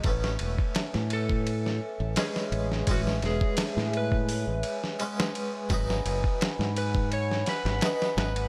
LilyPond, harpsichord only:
\new Staff \with { instrumentName = "Harpsichord" } { \time 4/4 \key a \lydian \tempo 4 = 85 <a b cis'>2. <gis b cis'>4 | <gis b cis'>2. <gis b cis'>4 | <fis b dis'>2. <fis b dis'>4 | }